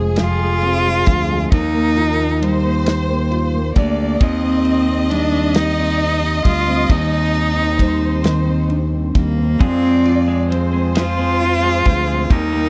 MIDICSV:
0, 0, Header, 1, 7, 480
1, 0, Start_track
1, 0, Tempo, 899550
1, 809, Time_signature, 6, 3, 24, 8
1, 6772, End_track
2, 0, Start_track
2, 0, Title_t, "Violin section"
2, 0, Program_c, 0, 48
2, 0, Note_on_c, 0, 68, 87
2, 790, Note_off_c, 0, 68, 0
2, 815, Note_on_c, 0, 70, 93
2, 1291, Note_off_c, 0, 70, 0
2, 1292, Note_on_c, 0, 72, 120
2, 1986, Note_off_c, 0, 72, 0
2, 2010, Note_on_c, 0, 74, 99
2, 2246, Note_off_c, 0, 74, 0
2, 2247, Note_on_c, 0, 75, 127
2, 4159, Note_on_c, 0, 72, 88
2, 4161, Note_off_c, 0, 75, 0
2, 4882, Note_off_c, 0, 72, 0
2, 5122, Note_on_c, 0, 74, 96
2, 5585, Note_off_c, 0, 74, 0
2, 5605, Note_on_c, 0, 72, 101
2, 6565, Note_off_c, 0, 72, 0
2, 6571, Note_on_c, 0, 70, 93
2, 6772, Note_off_c, 0, 70, 0
2, 6772, End_track
3, 0, Start_track
3, 0, Title_t, "Cello"
3, 0, Program_c, 1, 42
3, 96, Note_on_c, 1, 65, 112
3, 791, Note_off_c, 1, 65, 0
3, 814, Note_on_c, 1, 63, 104
3, 1509, Note_off_c, 1, 63, 0
3, 2011, Note_on_c, 1, 58, 75
3, 2248, Note_on_c, 1, 60, 93
3, 2256, Note_off_c, 1, 58, 0
3, 2722, Note_on_c, 1, 62, 96
3, 2730, Note_off_c, 1, 60, 0
3, 2960, Note_on_c, 1, 63, 96
3, 2968, Note_off_c, 1, 62, 0
3, 3439, Note_off_c, 1, 63, 0
3, 3443, Note_on_c, 1, 65, 100
3, 3683, Note_on_c, 1, 63, 101
3, 3691, Note_off_c, 1, 65, 0
3, 4643, Note_off_c, 1, 63, 0
3, 4885, Note_on_c, 1, 58, 86
3, 5127, Note_on_c, 1, 60, 113
3, 5135, Note_off_c, 1, 58, 0
3, 5608, Note_off_c, 1, 60, 0
3, 5856, Note_on_c, 1, 65, 114
3, 6570, Note_on_c, 1, 63, 93
3, 6578, Note_off_c, 1, 65, 0
3, 6772, Note_off_c, 1, 63, 0
3, 6772, End_track
4, 0, Start_track
4, 0, Title_t, "Nylon-string guitar"
4, 0, Program_c, 2, 24
4, 0, Note_on_c, 2, 41, 75
4, 0, Note_on_c, 2, 53, 63
4, 0, Note_on_c, 2, 56, 56
4, 0, Note_on_c, 2, 60, 64
4, 83, Note_off_c, 2, 41, 0
4, 90, Note_on_c, 2, 41, 83
4, 204, Note_off_c, 2, 56, 0
4, 211, Note_on_c, 2, 56, 58
4, 326, Note_off_c, 2, 60, 0
4, 333, Note_on_c, 2, 60, 64
4, 450, Note_off_c, 2, 56, 0
4, 456, Note_on_c, 2, 56, 59
4, 570, Note_off_c, 2, 53, 0
4, 572, Note_on_c, 2, 53, 58
4, 688, Note_off_c, 2, 56, 0
4, 695, Note_on_c, 2, 56, 65
4, 814, Note_on_c, 2, 51, 69
4, 858, Note_off_c, 2, 41, 0
4, 859, Note_off_c, 2, 60, 0
4, 860, Note_off_c, 2, 56, 0
4, 929, Note_on_c, 2, 58, 51
4, 1048, Note_on_c, 2, 65, 66
4, 1160, Note_off_c, 2, 58, 0
4, 1166, Note_on_c, 2, 58, 54
4, 1285, Note_off_c, 2, 53, 0
4, 1287, Note_on_c, 2, 55, 66
4, 1398, Note_off_c, 2, 58, 0
4, 1405, Note_on_c, 2, 58, 57
4, 1641, Note_off_c, 2, 58, 0
4, 1647, Note_on_c, 2, 58, 65
4, 1759, Note_off_c, 2, 65, 0
4, 1766, Note_on_c, 2, 65, 68
4, 1782, Note_off_c, 2, 51, 0
4, 1880, Note_off_c, 2, 58, 0
4, 1887, Note_on_c, 2, 58, 61
4, 2004, Note_off_c, 2, 55, 0
4, 2006, Note_on_c, 2, 55, 61
4, 2119, Note_off_c, 2, 58, 0
4, 2125, Note_on_c, 2, 58, 61
4, 2242, Note_on_c, 2, 51, 72
4, 2291, Note_off_c, 2, 65, 0
4, 2292, Note_off_c, 2, 58, 0
4, 2362, Note_on_c, 2, 60, 60
4, 2599, Note_off_c, 2, 60, 0
4, 2601, Note_on_c, 2, 60, 51
4, 2719, Note_off_c, 2, 55, 0
4, 2721, Note_on_c, 2, 55, 66
4, 2835, Note_off_c, 2, 60, 0
4, 2837, Note_on_c, 2, 60, 62
4, 2960, Note_off_c, 2, 51, 0
4, 3075, Note_off_c, 2, 60, 0
4, 3077, Note_on_c, 2, 60, 61
4, 3313, Note_off_c, 2, 60, 0
4, 3315, Note_on_c, 2, 60, 63
4, 3430, Note_off_c, 2, 55, 0
4, 3436, Note_on_c, 2, 55, 54
4, 3554, Note_off_c, 2, 60, 0
4, 3556, Note_on_c, 2, 60, 63
4, 3675, Note_on_c, 2, 51, 68
4, 3789, Note_off_c, 2, 60, 0
4, 3791, Note_on_c, 2, 60, 49
4, 4032, Note_off_c, 2, 60, 0
4, 4034, Note_on_c, 2, 60, 56
4, 4149, Note_off_c, 2, 55, 0
4, 4156, Note_on_c, 2, 55, 66
4, 4270, Note_off_c, 2, 60, 0
4, 4272, Note_on_c, 2, 60, 57
4, 4388, Note_off_c, 2, 51, 0
4, 4395, Note_on_c, 2, 51, 77
4, 4513, Note_off_c, 2, 60, 0
4, 4515, Note_on_c, 2, 60, 58
4, 4634, Note_on_c, 2, 62, 62
4, 4756, Note_off_c, 2, 60, 0
4, 4758, Note_on_c, 2, 60, 52
4, 4871, Note_off_c, 2, 55, 0
4, 4877, Note_on_c, 2, 55, 50
4, 4999, Note_off_c, 2, 60, 0
4, 5001, Note_on_c, 2, 60, 57
4, 5120, Note_off_c, 2, 51, 0
4, 5122, Note_on_c, 2, 53, 64
4, 5170, Note_off_c, 2, 55, 0
4, 5170, Note_off_c, 2, 62, 0
4, 5241, Note_off_c, 2, 60, 0
4, 5243, Note_on_c, 2, 60, 49
4, 5365, Note_on_c, 2, 65, 59
4, 5481, Note_off_c, 2, 60, 0
4, 5488, Note_on_c, 2, 60, 53
4, 5609, Note_on_c, 2, 56, 63
4, 5721, Note_off_c, 2, 60, 0
4, 5728, Note_on_c, 2, 60, 59
4, 5847, Note_off_c, 2, 53, 0
4, 5849, Note_on_c, 2, 53, 79
4, 5963, Note_off_c, 2, 60, 0
4, 5970, Note_on_c, 2, 60, 58
4, 6086, Note_off_c, 2, 65, 0
4, 6088, Note_on_c, 2, 65, 64
4, 6202, Note_off_c, 2, 60, 0
4, 6209, Note_on_c, 2, 60, 57
4, 6322, Note_off_c, 2, 56, 0
4, 6329, Note_on_c, 2, 56, 59
4, 6442, Note_off_c, 2, 60, 0
4, 6448, Note_on_c, 2, 60, 62
4, 6563, Note_off_c, 2, 53, 0
4, 6565, Note_on_c, 2, 51, 69
4, 6614, Note_off_c, 2, 56, 0
4, 6614, Note_off_c, 2, 60, 0
4, 6683, Note_on_c, 2, 58, 55
4, 6772, Note_off_c, 2, 51, 0
4, 6772, Note_off_c, 2, 58, 0
4, 6772, Note_off_c, 2, 65, 0
4, 6772, End_track
5, 0, Start_track
5, 0, Title_t, "Clean electric guitar"
5, 0, Program_c, 3, 27
5, 5125, Note_on_c, 3, 56, 83
5, 5235, Note_off_c, 3, 56, 0
5, 5242, Note_on_c, 3, 56, 59
5, 5366, Note_on_c, 3, 65, 57
5, 5478, Note_off_c, 3, 56, 0
5, 5484, Note_on_c, 3, 56, 68
5, 5605, Note_on_c, 3, 60, 52
5, 5718, Note_off_c, 3, 56, 0
5, 5725, Note_on_c, 3, 56, 56
5, 5837, Note_off_c, 3, 56, 0
5, 5843, Note_on_c, 3, 56, 75
5, 5959, Note_off_c, 3, 56, 0
5, 5966, Note_on_c, 3, 56, 54
5, 6083, Note_off_c, 3, 65, 0
5, 6085, Note_on_c, 3, 65, 67
5, 6197, Note_off_c, 3, 56, 0
5, 6203, Note_on_c, 3, 56, 63
5, 6318, Note_off_c, 3, 60, 0
5, 6325, Note_on_c, 3, 60, 54
5, 6437, Note_off_c, 3, 56, 0
5, 6444, Note_on_c, 3, 56, 56
5, 6560, Note_off_c, 3, 56, 0
5, 6563, Note_on_c, 3, 55, 78
5, 6612, Note_off_c, 3, 60, 0
5, 6681, Note_off_c, 3, 55, 0
5, 6683, Note_on_c, 3, 55, 58
5, 6699, Note_off_c, 3, 65, 0
5, 6772, Note_off_c, 3, 55, 0
5, 6772, End_track
6, 0, Start_track
6, 0, Title_t, "Fingered electric bass"
6, 0, Program_c, 4, 33
6, 0, Note_on_c, 4, 29, 84
6, 548, Note_off_c, 4, 29, 0
6, 571, Note_on_c, 4, 38, 91
6, 795, Note_off_c, 4, 38, 0
6, 809, Note_on_c, 4, 39, 104
6, 1985, Note_off_c, 4, 39, 0
6, 2006, Note_on_c, 4, 38, 98
6, 2230, Note_off_c, 4, 38, 0
6, 2245, Note_on_c, 4, 39, 106
6, 3419, Note_off_c, 4, 39, 0
6, 3442, Note_on_c, 4, 38, 81
6, 3666, Note_off_c, 4, 38, 0
6, 3678, Note_on_c, 4, 39, 108
6, 4861, Note_off_c, 4, 39, 0
6, 4883, Note_on_c, 4, 39, 82
6, 5110, Note_off_c, 4, 39, 0
6, 5124, Note_on_c, 4, 41, 105
6, 6305, Note_off_c, 4, 41, 0
6, 6329, Note_on_c, 4, 38, 78
6, 6552, Note_off_c, 4, 38, 0
6, 6565, Note_on_c, 4, 39, 109
6, 6772, Note_off_c, 4, 39, 0
6, 6772, End_track
7, 0, Start_track
7, 0, Title_t, "Drums"
7, 86, Note_on_c, 9, 51, 75
7, 94, Note_on_c, 9, 38, 87
7, 139, Note_off_c, 9, 51, 0
7, 148, Note_off_c, 9, 38, 0
7, 328, Note_on_c, 9, 51, 39
7, 381, Note_off_c, 9, 51, 0
7, 567, Note_on_c, 9, 51, 57
7, 572, Note_on_c, 9, 36, 93
7, 620, Note_off_c, 9, 51, 0
7, 625, Note_off_c, 9, 36, 0
7, 810, Note_on_c, 9, 51, 65
7, 811, Note_on_c, 9, 36, 109
7, 864, Note_off_c, 9, 36, 0
7, 864, Note_off_c, 9, 51, 0
7, 1049, Note_on_c, 9, 51, 39
7, 1103, Note_off_c, 9, 51, 0
7, 1294, Note_on_c, 9, 51, 59
7, 1347, Note_off_c, 9, 51, 0
7, 1527, Note_on_c, 9, 51, 78
7, 1536, Note_on_c, 9, 38, 89
7, 1581, Note_off_c, 9, 51, 0
7, 1589, Note_off_c, 9, 38, 0
7, 1769, Note_on_c, 9, 51, 37
7, 1822, Note_off_c, 9, 51, 0
7, 2005, Note_on_c, 9, 51, 60
7, 2008, Note_on_c, 9, 36, 89
7, 2058, Note_off_c, 9, 51, 0
7, 2061, Note_off_c, 9, 36, 0
7, 2243, Note_on_c, 9, 51, 66
7, 2245, Note_on_c, 9, 36, 108
7, 2297, Note_off_c, 9, 51, 0
7, 2299, Note_off_c, 9, 36, 0
7, 2480, Note_on_c, 9, 51, 40
7, 2534, Note_off_c, 9, 51, 0
7, 2726, Note_on_c, 9, 51, 57
7, 2780, Note_off_c, 9, 51, 0
7, 2958, Note_on_c, 9, 51, 75
7, 2966, Note_on_c, 9, 38, 100
7, 3012, Note_off_c, 9, 51, 0
7, 3020, Note_off_c, 9, 38, 0
7, 3203, Note_on_c, 9, 51, 36
7, 3256, Note_off_c, 9, 51, 0
7, 3442, Note_on_c, 9, 36, 89
7, 3442, Note_on_c, 9, 51, 65
7, 3495, Note_off_c, 9, 36, 0
7, 3496, Note_off_c, 9, 51, 0
7, 3680, Note_on_c, 9, 36, 118
7, 3680, Note_on_c, 9, 51, 65
7, 3733, Note_off_c, 9, 36, 0
7, 3733, Note_off_c, 9, 51, 0
7, 3918, Note_on_c, 9, 51, 36
7, 3971, Note_off_c, 9, 51, 0
7, 4158, Note_on_c, 9, 36, 90
7, 4161, Note_on_c, 9, 51, 58
7, 4212, Note_off_c, 9, 36, 0
7, 4214, Note_off_c, 9, 51, 0
7, 4397, Note_on_c, 9, 51, 73
7, 4405, Note_on_c, 9, 38, 97
7, 4450, Note_off_c, 9, 51, 0
7, 4458, Note_off_c, 9, 38, 0
7, 4641, Note_on_c, 9, 51, 35
7, 4694, Note_off_c, 9, 51, 0
7, 4882, Note_on_c, 9, 51, 60
7, 4883, Note_on_c, 9, 36, 88
7, 4935, Note_off_c, 9, 51, 0
7, 4937, Note_off_c, 9, 36, 0
7, 5125, Note_on_c, 9, 36, 116
7, 5125, Note_on_c, 9, 51, 64
7, 5178, Note_off_c, 9, 51, 0
7, 5179, Note_off_c, 9, 36, 0
7, 5365, Note_on_c, 9, 51, 40
7, 5418, Note_off_c, 9, 51, 0
7, 5613, Note_on_c, 9, 51, 55
7, 5667, Note_off_c, 9, 51, 0
7, 5845, Note_on_c, 9, 51, 78
7, 5853, Note_on_c, 9, 38, 98
7, 5898, Note_off_c, 9, 51, 0
7, 5906, Note_off_c, 9, 38, 0
7, 6090, Note_on_c, 9, 51, 35
7, 6143, Note_off_c, 9, 51, 0
7, 6324, Note_on_c, 9, 51, 54
7, 6328, Note_on_c, 9, 36, 88
7, 6378, Note_off_c, 9, 51, 0
7, 6381, Note_off_c, 9, 36, 0
7, 6565, Note_on_c, 9, 51, 67
7, 6566, Note_on_c, 9, 36, 111
7, 6618, Note_off_c, 9, 51, 0
7, 6619, Note_off_c, 9, 36, 0
7, 6772, End_track
0, 0, End_of_file